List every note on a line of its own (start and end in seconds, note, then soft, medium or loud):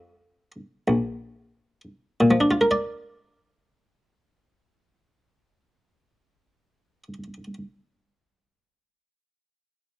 0.00 0.51 F2 soft
0.00 0.51 A#4 medium
0.88 1.81 A#1 soft
2.21 7.03 A#2 soft
2.31 7.13 F3 soft
2.41 7.23 D4 soft
2.51 7.33 F4 soft
2.61 7.44 A#4 soft
2.71 7.54 D5 soft